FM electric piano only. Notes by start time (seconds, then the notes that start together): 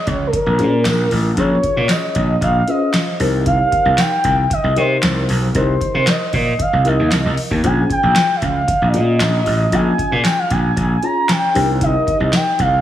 0.59 C#4 F4 G#4 C5
1.37 C#4 F4 G#4 C#5
2.68 C#4 F4 G#4 B4
2.75 C5
3.20 D#4 G4 A#4 C5
4.76 D#4 G4 A#4 D#5
5.55 D#4 G4 A#4 D#5
6.84 D#4 G4 A#4 D#5
7.63 C#4 F4 G#4 C5
8.94 C#4 F4 G#4 D#5
9.72 C#4 F4 G#4 D#5
11.03 C#4 F4 G#4 C#5
11.54 D4 G4 A#4 C5
11.61 D#4